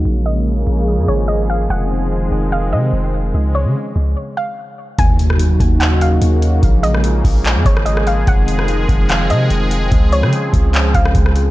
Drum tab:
HH |----------------|----------------|----------------|x-x-x-x-x-x-x-x-|
CP |----------------|----------------|----------------|--------x-------|
SD |----------------|----------------|----------------|---r------------|
BD |----------------|----------------|----------------|o-----o---------|

HH |x-x-x-o-x-x-x-x-|x-x-x-x-x-x-x-x-|x-x-x-x-x-x-x-x-|
CP |--------x-------|--------x-------|--------x-------|
SD |---r-------r-r--|---r------------|---r-------r-r--|
BD |o-----o---o-----|o-----o---------|o-----o---o-o---|